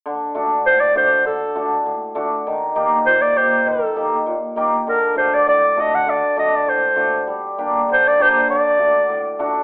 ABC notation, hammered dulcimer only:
X:1
M:2/4
L:1/16
Q:1/4=100
K:none
V:1 name="Hammered dulcimer"
z2 [A,D^F] z3 [A,DF] z | z2 [A,D^F] z3 [A,DF] z | z2 [_B,_EG] z3 [B,EG] z | z2 [_B,_EG] z3 [B,EG] z |
z2 [A,D^F] z3 [A,DF] z | z2 [A,D^F] z3 [A,DF] z | z2 [_B,DG] z3 [B,DG] z | z2 [A,D^F] z3 [A,DF] z |]
V:2 name="Hammered dulcimer" clef=bass
D,4 A,,4 | D,4 A,,4 | _E,4 _B,,4 | _E,4 _B,,4 |
D,4 A,,4 | D,4 A,,4 | G,4 D,4 | D,4 A,,4 |]